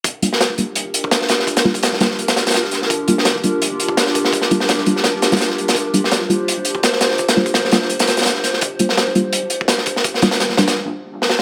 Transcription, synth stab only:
X:1
M:4/4
L:1/16
Q:"Swing 16ths" 1/4=168
K:Gm
V:1 name="Synth stab"
z2 [G,B,DF] z3 [G,B,DF] z8 z | z2 [G,B,DF] z3 [G,B,DF] z8 z | z2 [G,B,DF] z3 [G,B,DF] z8 z | z2 [G,B,DF] z3 [G,B,DF] z4 [G,B,DF] z4 |
z2 [G,B,DF] z3 [G,B,DF] z8 z | z2 [G,B,DF] z3 [G,B,DF] z8 z | z2 [G,B,DF] z3 [G,B,DF] z8 z | z2 [G,B,DF] z3 [G,B,DF] z8 z |]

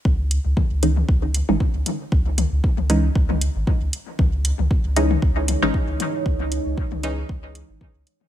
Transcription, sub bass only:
X:1
M:4/4
L:1/16
Q:"Swing 16ths" 1/4=116
K:C#m
V:1 name="Sub bass" clef=bass
C,,3 C,, z C,,3 C,,3 G,,, z C,, z2 | C,,3 C,, z C,,3 C,,3 G,,, z C,, z2 | C,,3 C,, z C,,3 C,,3 G,,, z C,, z2 | C,,3 C,, z C,,3 C,,3 G,,, z C,, z2 |]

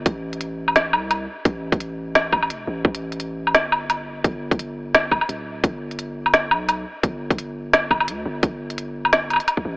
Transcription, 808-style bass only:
X:1
M:4/4
L:1/16
Q:"Swing 16ths" 1/4=172
K:Gmix
V:1 name="808-style bass" clef=bass
A,,,8- A,,,2 C,,4 z2 | A,,,12 E,,,2 A,,,2 | A,,,8 G,,,8 | G,,,8- G,,,2 z2 D,,,4 |
G,,,8- G,,,2 B,,,4 z2 | G,,,12 D,,2 G,,,2 | G,,,8- G,,,2 z4 A,,, z |]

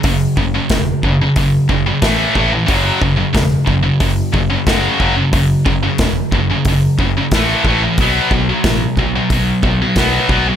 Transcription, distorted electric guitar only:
X:1
M:4/4
L:1/16
Q:1/4=91
K:F#m
V:1 name="Distorted electric guitar" clef=bass
[F,,C,]2 [F,,C,] [F,,C,] [F,,C,]2 [F,,C,] [F,,C,] [F,,C,]2 [F,,C,] [F,,C,] [A,,E,A,]2 [A,,E,A,] [A,,E,] | [F,,C,F,]2 [F,,C,] [F,,C,] [F,,C,]2 [F,,C,] [F,,C,] [F,,C,]2 [F,,C,] [F,,C,] [F,,C,F,]2 [F,,C,F,] [F,,C,] | [F,,C,]2 [F,,C,] [F,,C,] [F,,C,]2 [F,,C,] [F,,C,] [F,,C,]2 [F,,C,] [F,,C,] [A,,E,A,]2 [A,,E,A,] [A,,E,] | [B,,F,B,]2 [B,,F,] [B,,F,] [B,,F,]2 [B,,F,] [B,,F,] [B,,F,]2 [B,,F,] [B,,F,] [B,,F,B,]2 [B,,F,B,] [B,,F,] |]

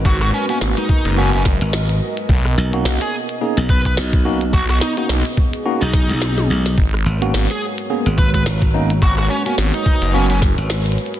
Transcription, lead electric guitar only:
X:1
M:4/4
L:1/16
Q:"Swing 16ths" 1/4=107
K:G#m
V:1 name="Lead electric guitar"
F F C C z D3 C C z6 | z4 z G z4 B B z4 | F F D D z4 z D4 z3 | z4 z G z4 B B z4 |
F F C C z D3 C C z6 |]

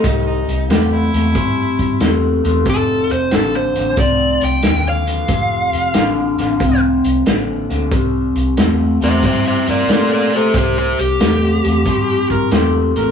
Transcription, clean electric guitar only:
X:1
M:4/4
L:1/8
Q:"Swing" 1/4=91
K:Cmix
V:1 name="Clean electric guitar" clef=bass
[C,G,]2 [C,A,] [C,A,] [C,G,]2 [C,A,] [C,A,] | [F,,C,]2 [F,,D,] [F,,D,] [F,,C,]2 [F,,D,] [F,,D,] | [F,,C,]2 [F,,D,] [F,,D,] [F,,C,]2 [F,,D,] [F,,D,] | [C,G,]2 [C,A,] [C,A,] [C,G,]2 [C,A,] [C,A,] |
[C,G,]2 [C,A,] [C,A,] [C,G,]2 [C,A,] [C,A,] |]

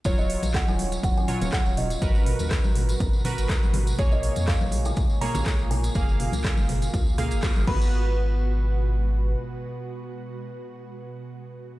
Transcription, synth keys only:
X:1
M:4/4
L:1/8
Q:"Swing 16ths" 1/4=122
K:G#dor
V:1 name="Synth keys"
[F,Ec]4- [F,Ec] [F,Ec]3 | [FAB]4- [FAB] [FAB]3 | [A,Gc]4- [A,Gc] [A,Gc]3 | [A,Ge]4- [A,Ge] [A,Ge]2 [B,FB]- |
[B,FB]8- | [B,FB]8 |]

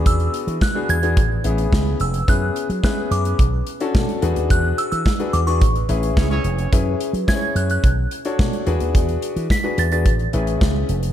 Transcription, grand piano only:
X:1
M:4/4
L:1/16
Q:1/4=108
K:Emix
V:1 name="Grand piano"
[B,DFG]4 z [B,DFG] z [B,DFG] z2 [B,CEG]4 z2 | [B,CEG]3 z [B,CEG]4 z3 [CDFA]3 [DFGB]2- | [DFGB]4 z [DFGB] z [DFGB] z2 [CEGB]4 z2 | [CEGB]3 z [CEG=c^c]4 z3 [DFAc]3 [DFGB]2- |
[DFGB]4 z [DFGB] z [DFGB] z2 [CEGB]4 z2 |]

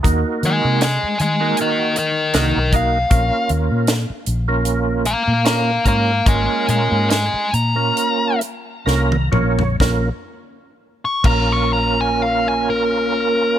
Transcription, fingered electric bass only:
X:1
M:4/4
L:1/16
Q:"Swing 16ths" 1/4=73
K:Bbm
V:1 name="Fingered electric bass" clef=bass
E,, z E, C,2 z E,2 z4 C,, _C,,3 | B,,, z E,, B,,2 z B,,,4- B,,, B,,3 A,,2 | A,,, z B,, A,,2 z B,,2 z4 C,,2 B,,,2 | B,,, z4 z B,,,8- B,,,2 |]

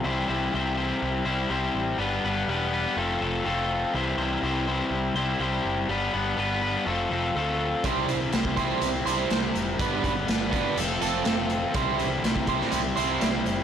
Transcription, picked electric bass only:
X:1
M:4/4
L:1/8
Q:1/4=123
K:C
V:1 name="Picked electric bass" clef=bass
C,, C,, C,,2 C,, C,, C,, A,,, | G,,, G,,, E,,,2 F,,, F,,, F,,,2 | C,, C,, C,,2 C,, C,, C,, ^F,,, | G,,, G,,, G,,,2 F,,, F,,, D,,2 |
C,, C,, C,,2 C,, C,, C,, F,,, | G,,, G,,, G,,,2 F,,, F,,, F,,,2 | C,, C,, C,,2 C,, C,, C,, ^F,,, |]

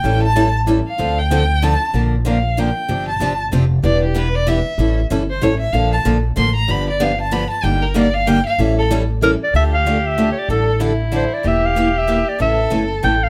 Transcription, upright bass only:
X:1
M:3/4
L:1/8
Q:"Swing" 1/4=190
K:Dm
V:1 name="Upright bass" clef=bass
A,,,6 | D,,6 | B,,,6 | G,,,2 G,,,2 F,,,2 |
E,,,6 | A,,,2 G,,,2 A,,,2 | B,,,2 B,,,2 A,,,2 | G,,,6 |
G,,,6 | A,,,6 | D,,6 | A,,,6 |
E,,,6 | A,,,2 G,,,2 A,,,2 |]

